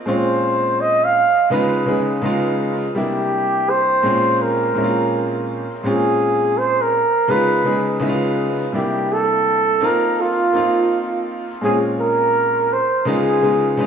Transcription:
0.05 1.18 A#2 medium
0.05 1.18 G#3 medium
0.05 1.19 C4 medium
0.05 1.19 C#4 medium
0.05 1.20 F4 medium
0.05 0.82 C5 medium
0.81 1.06 D#5 medium
1.04 1.51 F5 loud
1.50 1.82 C#3 medium
1.50 1.82 G#3 medium
1.50 1.83 B3 medium
1.50 1.83 D#4 medium
1.50 1.83 F4 medium
1.50 2.20 B4 medium
1.86 2.20 C#3 medium
1.86 2.21 G#3 medium
1.86 2.22 B3 medium
1.86 2.23 D#4 medium
1.86 2.24 G#4 medium
2.22 2.85 C#3 medium
2.22 2.85 G#3 medium
2.22 2.86 B3 medium
2.22 2.86 D#4 medium
2.22 2.87 F4 medium
2.94 4.04 C3 medium
2.94 4.04 G3 medium
2.94 4.04 A#3 medium
2.94 4.05 D4 medium
2.94 4.05 E4 medium
2.94 3.71 G4 medium
3.70 4.43 C5 loud
4.03 4.66 A#2 medium
4.03 4.66 G#3 medium
4.03 4.66 C4 medium
4.03 4.67 C#4 medium
4.03 4.67 F4 medium
4.42 5.50 A#4 medium
4.74 5.62 A#2 medium
4.74 5.63 G#3 medium
4.74 5.63 C4 medium
4.74 5.63 C#4 medium
4.74 4.86 E4 medium
4.84 5.67 F4 medium
5.83 6.96 A#2 medium
5.83 6.96 G#3 medium
5.83 6.97 C4 medium
5.83 6.97 C#4 medium
5.83 6.98 F4 medium
5.83 6.59 G#4 medium
6.58 6.83 C5 loud
6.82 7.32 A#4 loud
7.28 7.60 C#3 medium
7.28 7.60 G#3 medium
7.28 7.61 B3 medium
7.28 7.61 D#4 medium
7.28 7.61 F4 medium
7.28 8.02 B4 medium
7.64 7.98 C#3 medium
7.64 7.99 G#3 medium
7.64 8.00 B3 medium
7.64 8.00 D#4 medium
7.64 8.03 G#4 medium
7.99 8.63 C#3 medium
7.99 8.63 G#3 medium
7.99 8.64 B3 medium
7.99 8.64 D#4 medium
7.99 8.11 E4 medium
8.09 8.68 F4 medium
8.72 9.82 C3 medium
8.72 9.82 G3 medium
8.72 9.79 A#3 medium
8.72 9.83 D4 medium
8.72 9.83 E4 medium
8.72 9.14 G4 medium
9.13 9.87 A4 loud
9.80 10.44 A#3 medium
9.80 10.44 C4 medium
9.80 10.45 D#4 medium
9.80 10.45 F4 medium
9.85 10.23 A#4 loud
10.21 11.28 F4 medium
10.53 11.41 A#3 medium
10.53 11.41 C4 medium
10.53 11.42 D#4 medium
10.53 11.42 F4 medium
11.61 12.74 A#2 medium
11.61 12.75 G#3 medium
11.61 12.75 C4 medium
11.61 12.76 C#4 medium
11.61 12.76 F4 medium
11.61 11.80 G#4 medium
12.00 12.74 A#4 loud
12.73 13.08 C5 medium
13.05 13.38 C#3 medium
13.05 13.38 G#3 medium
13.05 13.39 B3 medium
13.05 13.39 D#4 medium
13.05 13.39 F4 medium
13.05 13.87 G#4 medium
13.41 13.76 C#3 medium
13.41 13.76 G#3 medium
13.41 13.77 B3 medium
13.41 13.78 D#4 medium
13.41 13.79 F4 medium
13.77 13.87 C#3 medium
13.77 13.87 G#3 medium
13.77 13.87 B3 medium
13.77 13.87 D#4 medium
13.77 13.87 F4 medium

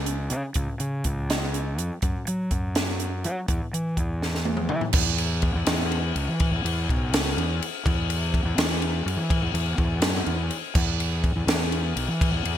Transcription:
0.00 0.32 C#2 medium
0.06 closed hi-hat medium
0.30 0.42 C#3 medium
0.30 closed hi-hat medium
0.54 0.67 C#2 medium
0.54 kick loud
0.54 closed hi-hat medium
0.80 1.02 C#3 medium
0.80 closed hi-hat medium
1.04 1.79 C#2 medium
1.04 kick medium
1.04 closed hi-hat medium
1.30 snare loud
1.30 closed hi-hat medium
1.54 closed hi-hat medium
1.78 1.89 F2 medium
1.78 closed hi-hat medium
2.02 2.13 F#2 medium
2.02 kick loud
2.02 closed hi-hat medium
2.27 2.49 F#3 medium
2.27 closed hi-hat medium
2.51 3.26 F#2 medium
2.51 kick medium
2.51 closed hi-hat medium
2.75 snare loud
2.75 closed hi-hat medium
3.00 closed hi-hat medium
3.24 3.35 F#3 medium
3.24 closed hi-hat medium
3.48 3.59 E2 medium
3.48 kick medium
3.48 closed hi-hat medium
3.73 3.95 E3 medium
3.73 closed hi-hat medium
3.97 4.71 E2 medium
3.97 kick medium
3.97 closed hi-hat medium
4.22 snare medium
4.35 snare soft
4.45 high tom medium
4.57 mid tom medium
4.69 4.80 E3 medium
4.69 mid tom medium
4.81 floor tom medium
4.93 5.51 E2 medium
4.93 kick loud
4.93 crash loud
5.18 ride medium
5.42 kick medium
5.42 ride medium
5.55 5.66 E2 medium
5.66 6.12 E2 loud
5.66 snare loud
5.66 ride loud
5.92 ride medium
6.15 6.26 C#2 loud
6.15 ride medium
6.28 6.50 E3 medium
6.40 kick loud
6.40 ride loud
6.52 6.63 E2 medium
6.64 6.86 E2 loud
6.64 ride medium
6.89 7.13 B1 medium
6.89 kick medium
6.89 ride medium
7.13 7.35 C#2 loud
7.13 snare loud
7.13 ride loud
7.37 7.59 E2 medium
7.37 ride medium
7.62 ride medium
7.86 8.42 E2 loud
7.86 kick loud
7.86 ride loud
8.10 ride medium
8.34 kick medium
8.34 ride medium
8.45 8.56 E2 medium
8.58 9.02 E2 loud
8.58 snare loud
8.58 ride loud
8.82 ride medium
9.06 9.16 F#2 medium
9.06 ride medium
9.17 9.40 E3 medium
9.30 kick loud
9.30 ride loud
9.42 9.53 E2 medium
9.54 9.76 E2 loud
9.54 ride medium
9.78 10.02 E2 medium
9.78 kick medium
9.78 ride medium
10.02 10.25 F#2 loud
10.02 snare loud
10.02 ride loud
10.26 10.49 E2 medium
10.26 ride medium
10.51 ride medium
10.75 11.32 E2 loud
10.75 kick loud
10.75 crash loud
11.00 ride medium
11.24 kick medium
11.24 ride medium
11.36 11.47 E2 medium
11.47 11.92 E2 loud
11.47 snare loud
11.47 ride loud
11.72 ride medium
11.96 12.07 B1 loud
11.96 ride medium
12.08 12.31 E3 medium
12.21 kick loud
12.21 ride loud
12.31 12.43 E2 medium
12.45 12.58 E2 medium
12.45 ride medium

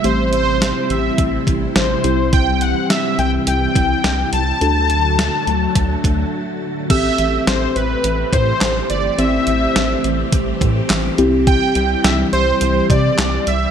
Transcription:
0.00 4.57 C3 medium
0.00 4.57 G3 medium
0.00 4.57 E4 medium
0.04 0.72 A1 loud
0.04 2.00 A3 medium
0.04 2.00 C4 medium
0.04 2.02 C4 medium
0.04 2.00 G4 medium
0.04 0.32 C5 medium
0.04 closed hi-hat medium
0.33 0.92 C5 loud
0.33 closed hi-hat medium
0.62 snare loud
0.62 closed hi-hat medium
0.90 1.10 A1 loud
0.90 1.43 E5 medium
0.90 closed hi-hat medium
1.18 1.38 A1 loud
1.18 kick medium
1.18 closed hi-hat medium
1.47 1.67 A1 loud
1.47 kick medium
1.47 closed hi-hat medium
1.76 1.96 A1 loud
1.76 2.35 C5 medium
1.76 snare loud
1.76 closed hi-hat medium
2.04 2.74 C2 loud
2.04 4.59 E3 medium
2.04 4.29 C4 medium
2.04 4.29 E4 medium
2.04 4.29 G4 medium
2.04 closed hi-hat medium
2.33 2.62 G5 loud
2.33 kick loud
2.33 closed hi-hat medium
2.61 2.88 F#5 medium
2.61 closed hi-hat medium
2.90 3.20 E5 medium
2.90 snare loud
2.90 closed hi-hat medium
3.19 3.39 C2 loud
3.19 3.31 G5 loud
3.19 closed hi-hat medium
3.47 3.67 C2 loud
3.47 4.29 G5 loud
3.47 closed hi-hat medium
3.75 3.96 C2 loud
3.75 kick medium
3.75 closed hi-hat medium
4.04 4.24 C2 loud
4.04 snare loud
4.04 closed hi-hat medium
4.33 4.53 C2 loud
4.33 6.29 A5 loud
4.33 closed hi-hat medium
4.61 5.29 D2 loud
4.61 6.88 D3 medium
4.61 6.88 F#3 medium
4.61 6.88 A3 medium
4.61 6.86 D4 medium
4.61 6.86 F#4 medium
4.61 6.88 F#4 medium
4.61 6.86 A4 medium
4.61 closed hi-hat medium
4.90 closed hi-hat medium
5.19 snare loud
5.19 closed hi-hat medium
5.47 5.67 D2 medium
5.47 closed hi-hat medium
5.75 5.96 D2 medium
5.75 kick medium
5.75 closed hi-hat medium
6.04 6.24 D2 loud
6.04 kick medium
6.04 closed hi-hat medium
6.90 7.10 A1 loud
6.90 13.71 E3 medium
6.90 11.15 A3 medium
6.90 9.15 C4 medium
6.90 13.71 C4 medium
6.90 13.71 G4 medium
6.90 9.15 G4 medium
6.90 9.15 A4 medium
6.90 7.43 E5 loud
6.90 kick loud
6.90 closed hi-hat medium
6.90 crash loud
7.18 7.39 A1 loud
7.18 closed hi-hat medium
7.47 7.67 A1 loud
7.47 7.76 C5 loud
7.47 snare loud
7.47 closed hi-hat medium
7.75 7.96 A1 loud
7.75 8.34 B4 loud
7.75 closed hi-hat medium
8.04 8.24 A1 loud
8.04 closed hi-hat medium
8.33 8.53 A2 loud
8.33 8.86 C5 loud
8.33 kick medium
8.33 closed hi-hat medium
8.61 8.81 A1 loud
8.61 snare loud
8.61 clap medium
8.61 closed hi-hat medium
8.90 9.10 G1 medium
8.90 9.19 D5 loud
8.90 closed hi-hat medium
9.18 9.39 A1 loud
9.18 11.14 C4 medium
9.18 11.14 G4 medium
9.18 11.14 C5 medium
9.18 10.29 E5 loud
9.18 closed hi-hat medium
9.47 9.67 A1 loud
9.47 closed hi-hat medium
9.76 9.96 A1 loud
9.76 snare loud
9.76 closed hi-hat medium
10.04 10.24 A1 loud
10.04 closed hi-hat medium
10.32 10.53 A1 loud
10.32 kick medium
10.32 closed hi-hat medium
10.61 10.81 A2 loud
10.61 kick medium
10.61 closed hi-hat medium
10.90 11.10 A1 loud
10.90 snare loud
10.90 clap medium
10.90 closed hi-hat medium
11.18 11.59 C2 loud
11.18 13.71 G3 medium
11.18 13.43 C4 medium
11.18 13.43 E4 medium
11.18 13.43 G4 medium
11.18 closed hi-hat medium
11.47 12.06 G5 loud
11.47 kick loud
11.47 closed hi-hat medium
11.75 11.96 C2 loud
11.75 closed hi-hat medium
12.04 12.24 C2 loud
12.04 12.17 E5 loud
12.04 snare loud
12.04 closed hi-hat medium
12.33 12.53 C2 loud
12.33 12.86 C5 loud
12.33 closed hi-hat medium
12.61 12.81 C2 loud
12.61 closed hi-hat loud
12.90 13.10 C3 loud
12.90 13.49 D5 loud
12.90 kick medium
12.90 closed hi-hat medium
13.19 13.39 C2 loud
13.19 snare loud
13.19 clap medium
13.19 closed hi-hat medium
13.47 13.67 C2 loud
13.47 13.71 E5 loud
13.47 closed hi-hat medium

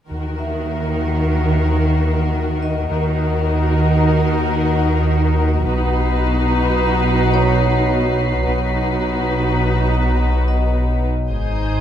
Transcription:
0.10 2.86 D#2 soft
0.10 2.87 D#2 medium
0.10 2.86 D#3 soft
0.10 2.87 D#3 soft
0.10 2.87 F#4 soft
0.10 2.86 A#4 soft
0.39 2.04 E5 soft
2.62 4.24 D#5 soft
2.89 5.63 D#2 soft
2.89 5.68 D#2 medium
2.89 5.63 D#3 soft
2.89 5.63 D#4 soft
2.89 5.63 F#4 soft
2.89 5.63 A#4 soft
5.64 8.42 B1 soft
5.64 8.46 B1 medium
5.64 8.42 B2 medium
5.64 8.42 D#4 medium
5.64 8.43 F#4 medium
5.64 8.42 B4 medium
5.64 9.23 B6 soft
5.64 9.23 C7 soft
7.34 9.00 C#5 soft
8.46 11.07 B1 soft
8.46 11.32 B1 medium
8.46 11.07 B2 soft
8.46 11.07 D#4 soft
8.46 11.07 F#4 soft
8.46 11.07 B4 soft
9.23 10.41 B6 soft
10.48 11.80 D#5 soft
11.30 11.80 G#1 medium
11.30 11.80 G#1 soft
11.30 11.80 G#2 soft
11.30 11.80 D#4 soft
11.30 11.80 G#4 soft
11.30 11.80 C5 soft
11.30 11.80 C6 soft
11.30 11.80 D#6 soft
11.30 11.80 G6 soft

